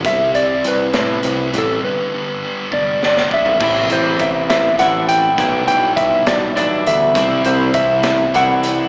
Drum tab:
CC |------------|------------|x-----------|------------|
HH |x-x-x-x-x-x-|------------|--x-x-x-x-x-|x-x-x-x-x-x-|
SD |------o-----|--------oo--|------o-----|------o-----|
FT |------------|-----------o|------------|------------|
BD |o-----------|------o---o-|o---o-------|o---o-------|

CC |------------|
HH |x-x-x-x-x-x-|
SD |------o-----|
FT |------------|
BD |o---o-------|